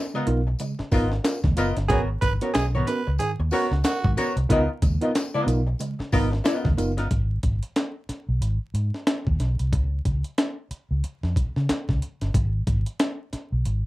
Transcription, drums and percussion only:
0.27 closed hi-hat
0.59 closed hi-hat, tambourine
0.79 snare
0.91 kick, open hi-hat, tambourine
1.12 snare
1.24 snare, closed hi-hat, tambourine
1.44 kick, snare
1.57 closed hi-hat, tambourine
1.77 snare, closed hi-hat
1.90 kick, closed hi-hat
2.22 kick, closed hi-hat, tambourine
2.41 closed hi-hat
2.55 snare, closed hi-hat, tambourine
2.87 snare, closed hi-hat, tambourine
3.18 closed hi-hat, tambourine
3.51 open hi-hat, tambourine
3.72 snare
3.84 snare, closed hi-hat, tambourine
4.04 kick
4.17 snare, closed hi-hat, tambourine
4.37 closed hi-hat
4.50 kick, closed hi-hat
4.82 kick, closed hi-hat, tambourine
5.01 closed hi-hat
5.15 snare, closed hi-hat, tambourine
5.48 closed hi-hat, tambourine
5.79 closed hi-hat, tambourine
6.00 snare
6.12 kick, open hi-hat, tambourine
6.33 snare
6.45 snare, closed hi-hat, tambourine
6.65 kick, snare
6.78 closed hi-hat, tambourine
6.98 snare, closed hi-hat
7.11 kick, closed hi-hat
7.43 kick, closed hi-hat
7.63 closed hi-hat
7.76 snare, closed hi-hat
8.09 snare, closed hi-hat
8.42 closed hi-hat
8.75 closed hi-hat
8.94 snare
9.07 snare, closed hi-hat
9.27 kick
9.40 snare, closed hi-hat
9.59 closed hi-hat
9.73 kick, closed hi-hat
10.05 kick, closed hi-hat
10.24 closed hi-hat
10.38 snare, closed hi-hat
10.71 closed hi-hat
11.04 closed hi-hat
11.23 snare
11.36 kick, closed hi-hat
11.56 snare
11.69 snare, closed hi-hat
11.89 kick, snare
12.02 closed hi-hat
12.21 snare, closed hi-hat
12.34 kick, closed hi-hat
12.67 kick, closed hi-hat
12.86 closed hi-hat
13.00 snare, closed hi-hat
13.33 snare, closed hi-hat
13.65 closed hi-hat

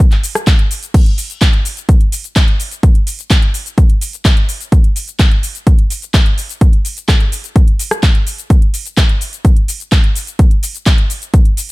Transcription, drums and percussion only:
0.01 shaker
0.12 clap, closed hi-hat
0.23 open hi-hat, shaker
0.35 cross-stick, closed hi-hat, shaker
0.47 kick, clap, closed hi-hat, shaker
0.59 closed hi-hat
0.71 open hi-hat, shaker
0.83 closed hi-hat, shaker
0.94 kick, closed hi-hat, crash, shaker
1.06 closed hi-hat
1.18 open hi-hat, shaker
1.30 closed hi-hat, shaker
1.42 kick, clap, closed hi-hat, shaker
1.53 closed hi-hat
1.65 open hi-hat, shaker
1.77 closed hi-hat, shaker
1.89 kick, closed hi-hat, shaker
2.01 closed hi-hat
2.12 open hi-hat, shaker
2.24 closed hi-hat, shaker
2.36 kick, clap, closed hi-hat, shaker
2.48 closed hi-hat
2.60 open hi-hat, shaker
2.71 closed hi-hat, shaker
2.83 kick, closed hi-hat, shaker
2.95 closed hi-hat
3.07 open hi-hat, shaker
3.19 closed hi-hat, shaker
3.30 kick, clap, closed hi-hat, shaker
3.42 closed hi-hat
3.54 open hi-hat, shaker
3.66 closed hi-hat, shaker
3.78 kick, closed hi-hat, shaker
3.90 closed hi-hat
4.01 open hi-hat, shaker
4.13 closed hi-hat, shaker
4.25 kick, clap, closed hi-hat, shaker
4.37 closed hi-hat
4.49 open hi-hat, shaker
4.61 closed hi-hat, shaker
4.72 kick, closed hi-hat, shaker
4.84 closed hi-hat
4.96 open hi-hat, shaker
5.08 closed hi-hat, shaker
5.19 kick, clap, closed hi-hat, shaker
5.31 closed hi-hat
5.43 open hi-hat, shaker
5.55 closed hi-hat, shaker
5.67 kick, closed hi-hat, shaker
5.79 closed hi-hat
5.90 open hi-hat, shaker
6.02 closed hi-hat, shaker
6.14 kick, clap, closed hi-hat, shaker
6.26 closed hi-hat
6.38 open hi-hat, shaker
6.49 closed hi-hat, shaker
6.61 kick, closed hi-hat, shaker
6.73 closed hi-hat
6.85 open hi-hat, shaker
6.97 closed hi-hat, shaker
7.08 kick, cross-stick, clap, closed hi-hat, shaker
7.20 closed hi-hat
7.32 open hi-hat, shaker
7.44 closed hi-hat, shaker
7.56 kick, closed hi-hat, shaker
7.68 closed hi-hat
7.79 open hi-hat, shaker
7.91 cross-stick, closed hi-hat, shaker
8.03 kick, clap, closed hi-hat, shaker
8.15 closed hi-hat
8.27 open hi-hat, shaker
8.38 closed hi-hat, shaker
8.50 kick, closed hi-hat, shaker
8.62 closed hi-hat
8.74 open hi-hat, shaker
8.86 closed hi-hat, shaker
8.97 kick, clap, closed hi-hat, shaker
9.09 closed hi-hat
9.21 open hi-hat, shaker
9.33 closed hi-hat, shaker
9.45 kick, closed hi-hat, shaker
9.56 closed hi-hat
9.68 open hi-hat, shaker
9.80 closed hi-hat, shaker
9.92 kick, clap, closed hi-hat, shaker
10.04 closed hi-hat
10.15 open hi-hat, shaker
10.27 closed hi-hat, shaker
10.39 kick, closed hi-hat, shaker
10.51 closed hi-hat
10.63 open hi-hat, shaker
10.75 closed hi-hat, shaker
10.86 kick, clap, closed hi-hat, shaker
10.98 closed hi-hat
11.10 open hi-hat, shaker
11.22 closed hi-hat, shaker
11.34 kick, closed hi-hat, shaker
11.45 closed hi-hat
11.57 open hi-hat, shaker

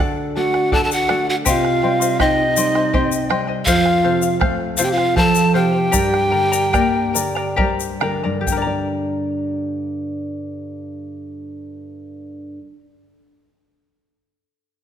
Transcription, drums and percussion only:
0.54 bombo rim
0.72 bombo low
0.91 shaker
1.09 bombo rim
1.46 bombo low, shaker
1.65 bombo rim
1.84 bombo rim
2.02 shaker
2.20 bombo rim, bombo low
2.57 shaker
2.75 bombo rim
2.94 bombo low
3.12 shaker
3.30 bombo rim
3.67 bombo low, shaker
3.86 bombo rim
4.04 bombo rim
4.22 shaker
4.41 bombo rim, bombo low
4.77 shaker
4.98 bombo rim
5.16 bombo low
5.35 shaker
5.93 bombo rim, bombo low, shaker
6.14 bombo rim
6.53 shaker
6.74 bombo rim, bombo low, shaker
6.95 bombo rim
7.16 shaker
7.36 bombo rim
7.58 bombo low
7.80 shaker
8.01 bombo rim
8.47 bombo low, shaker

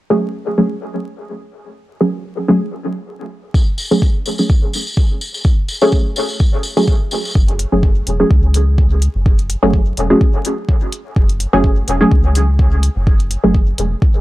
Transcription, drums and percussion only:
3.54 kick, tambourine
3.78 tambourine
3.91 tambourine
4.02 kick, tambourine
4.26 tambourine
4.38 tambourine
4.50 kick, tambourine
4.73 tambourine
4.87 tambourine
4.97 kick, tambourine
5.21 tambourine
5.34 tambourine
5.44 kick, tambourine
5.68 tambourine
5.81 tambourine
5.92 kick, tambourine
6.16 tambourine
6.29 tambourine
6.40 kick, tambourine
6.63 tambourine
6.77 tambourine
6.87 kick, tambourine
7.11 tambourine
7.25 tambourine
7.35 kick
7.48 closed hi-hat
7.59 closed hi-hat
7.83 kick
8.07 closed hi-hat
8.31 kick
8.54 closed hi-hat
8.78 kick
9.02 closed hi-hat
9.26 kick
9.39 closed hi-hat
9.50 closed hi-hat
9.73 kick
9.97 closed hi-hat
10.21 kick
10.45 closed hi-hat
10.69 kick
10.92 closed hi-hat
11.16 kick
11.29 closed hi-hat
11.40 closed hi-hat
11.64 kick
11.88 closed hi-hat
12.11 kick
12.35 closed hi-hat
12.59 kick
12.83 closed hi-hat
13.07 kick
13.20 closed hi-hat
13.31 closed hi-hat
13.54 kick
13.78 closed hi-hat
14.02 kick

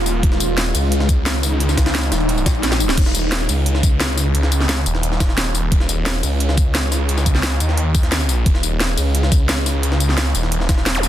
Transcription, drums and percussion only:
0.06 closed hi-hat, open hi-hat, tambourine
0.23 kick, closed hi-hat
0.32 snare
0.40 closed hi-hat, tambourine
0.57 snare, closed hi-hat
0.66 closed hi-hat
0.75 closed hi-hat, open hi-hat, tambourine
0.92 closed hi-hat
1.00 snare
1.09 kick, closed hi-hat, tambourine
1.26 snare, closed hi-hat
1.35 closed hi-hat
1.43 snare, closed hi-hat, open hi-hat, tambourine
1.60 closed hi-hat
1.69 snare, tambourine
1.77 kick, snare, closed hi-hat, tambourine
1.86 snare, closed hi-hat
1.95 snare, closed hi-hat
2.03 tambourine
2.12 snare, closed hi-hat, tambourine
2.20 closed hi-hat
2.29 closed hi-hat, open hi-hat
2.38 tambourine
2.46 kick, snare, closed hi-hat, tambourine
2.55 closed hi-hat
2.63 snare, closed hi-hat
2.72 snare, closed hi-hat, tambourine
2.80 open hi-hat, tambourine
2.89 snare, closed hi-hat
2.98 kick, closed hi-hat, crash
3.06 snare
3.15 closed hi-hat, tambourine
3.32 snare, closed hi-hat
3.40 closed hi-hat
3.49 closed hi-hat, open hi-hat, tambourine
3.66 closed hi-hat
3.75 snare
3.83 kick, closed hi-hat, tambourine
4.00 snare, closed hi-hat
4.09 closed hi-hat
4.18 snare, closed hi-hat, open hi-hat, tambourine
4.35 closed hi-hat
4.43 snare
4.52 closed hi-hat, tambourine
4.60 snare
4.69 snare, closed hi-hat
4.86 closed hi-hat, tambourine
4.95 snare
5.03 closed hi-hat
5.12 snare
5.20 kick, snare, closed hi-hat, tambourine
5.29 snare
5.37 snare, closed hi-hat
5.55 closed hi-hat, open hi-hat, tambourine
5.72 kick, closed hi-hat
5.80 snare
5.89 closed hi-hat, tambourine
6.06 snare, closed hi-hat
6.15 closed hi-hat
6.23 closed hi-hat, open hi-hat, tambourine
6.40 closed hi-hat
6.49 snare
6.58 kick, closed hi-hat, tambourine
6.75 snare, closed hi-hat
6.83 closed hi-hat
6.92 snare, closed hi-hat, open hi-hat, tambourine
7.09 closed hi-hat
7.18 snare, tambourine
7.26 kick, closed hi-hat, tambourine
7.35 snare
7.43 snare, closed hi-hat
7.60 closed hi-hat, tambourine
7.69 snare
7.77 closed hi-hat
7.95 kick, closed hi-hat, tambourine
8.03 snare, closed hi-hat
8.12 snare, closed hi-hat
8.20 closed hi-hat, tambourine
8.29 closed hi-hat, open hi-hat, tambourine
8.46 kick, closed hi-hat
8.55 snare
8.63 closed hi-hat, tambourine
8.80 snare, closed hi-hat
8.89 closed hi-hat
8.97 closed hi-hat, open hi-hat, tambourine
9.15 closed hi-hat
9.23 snare
9.32 kick, closed hi-hat, tambourine
9.49 snare, closed hi-hat
9.58 closed hi-hat
9.66 snare, closed hi-hat, open hi-hat, tambourine
9.83 closed hi-hat
9.92 snare
10.00 closed hi-hat, tambourine
10.09 snare
10.18 snare, closed hi-hat
10.35 closed hi-hat, tambourine
10.43 snare
10.52 closed hi-hat
10.60 snare
10.69 kick, snare, closed hi-hat, tambourine
10.78 snare
10.86 snare, closed hi-hat
11.03 closed hi-hat, open hi-hat, tambourine

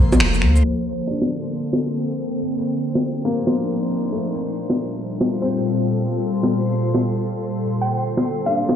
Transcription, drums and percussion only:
0.12 low bongo, shaker
0.20 finger snap
0.34 shaker
0.42 finger snap
0.56 shaker
1.22 low bongo, shaker
1.43 shaker
1.65 shaker
1.73 low bongo
1.87 shaker
2.30 shaker
2.74 shaker
2.95 low bongo, shaker
3.17 shaker
3.39 shaker
3.47 low bongo
3.61 shaker
3.83 shaker
4.04 shaker
4.70 low bongo, shaker
5.13 shaker
5.21 low bongo
5.34 shaker
6.43 low bongo, shaker
6.65 shaker
6.87 shaker
6.94 low bongo
7.52 shaker
7.95 shaker
8.17 low bongo, shaker
8.61 shaker
8.69 low bongo

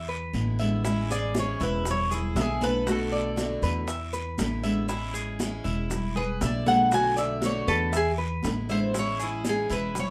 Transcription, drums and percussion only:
0.09 high conga
0.34 high conga, short guiro
0.59 short guiro
0.84 high bongo, high conga, long guiro, maracas
1.10 high conga, maracas
1.35 high bongo, high conga, short guiro, maracas
1.60 high conga, short guiro, maracas
1.85 high bongo, high conga, low conga, long guiro, maracas
2.11 high conga, low conga, maracas
2.36 high bongo, low bongo, high conga, short guiro, maracas
2.61 high conga, short guiro, maracas
2.87 high bongo, high conga, long guiro, maracas
3.12 high conga
3.37 high bongo, high conga, short guiro, maracas
3.62 high bongo, high conga, short guiro, maracas
3.88 high bongo, high conga, long guiro, maracas
4.13 high bongo, high conga, maracas
4.38 high bongo, low bongo, high conga, short guiro, maracas
4.64 high bongo, short guiro, maracas
4.89 high bongo, high conga, long guiro, maracas
5.15 high conga, maracas
5.39 high bongo, high conga, short guiro, maracas
5.65 high conga, short guiro, maracas
5.90 high bongo, high conga, low conga, long guiro, maracas
6.16 high conga, low conga
6.41 high bongo, low bongo, high conga, short guiro, maracas
6.66 high conga, short guiro, maracas
6.92 high bongo, high conga, long guiro, maracas
7.17 high conga, maracas
7.42 high bongo, high conga, short guiro, maracas
7.67 high bongo, high conga, short guiro, maracas
7.93 high bongo, high conga, long guiro, maracas
8.18 high bongo, high conga
8.43 high bongo, low bongo, high conga, short guiro, maracas
8.69 high bongo, short guiro, maracas
8.94 high bongo, long guiro, maracas
9.20 high conga, maracas
9.44 high bongo, high conga, short guiro, maracas
9.70 high conga, short guiro, maracas
9.95 high bongo, high conga, low conga, long guiro, maracas

